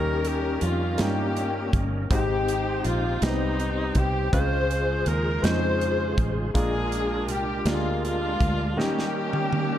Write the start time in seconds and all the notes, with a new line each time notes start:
Already playing: D#2 D#3 G3 A#3 C#4 D#4 G4 A#4
0.25 G4, closed hi-hat
0.61 F2 F4, closed hi-hat
0.98 G2 A#3 C#4 D#4 F4 G4, snare, closed hi-hat
1.02 A#3 G4
1.37 closed hi-hat
1.73 G1, kick, closed hi-hat
2.10 G#1 G#2 G#3 C4 D#4 G4 C5, kick, closed hi-hat
2.48 closed hi-hat
2.84 A#1 F4, closed hi-hat
3.22 C2 G3 B3 C4 D#4 G4, snare, closed hi-hat
3.29 C4
3.60 closed hi-hat
3.95 C2 G4, kick, closed hi-hat
4.32 C#2 C#3 G#3 C4 C#4 F4 G#4 C5, kick, closed hi-hat
4.71 closed hi-hat
5.06 D#2 A#4, closed hi-hat
5.42 F2 G#3 C4 C#4 D#4 F4 G#4 C5, snare, closed hi-hat
5.81 closed hi-hat
6.17 A1, kick, closed hi-hat
6.54 A#1 A#2 G#3 A#3 D4 F4 G#4 A#4, kick, closed hi-hat
6.92 closed hi-hat
7.28 C2 G4, closed hi-hat
7.65 D2 G#3 A#3 D4 F4 G4, snare, closed hi-hat
7.73 G#4
8.04 G#3 D4 F4, closed hi-hat
8.41 D2, kick, closed hi-hat
8.77 D#3 G3 A#3 C#4 D#4 G4 A#4, snare
8.99 snare
9.33 high tom
9.53 high tom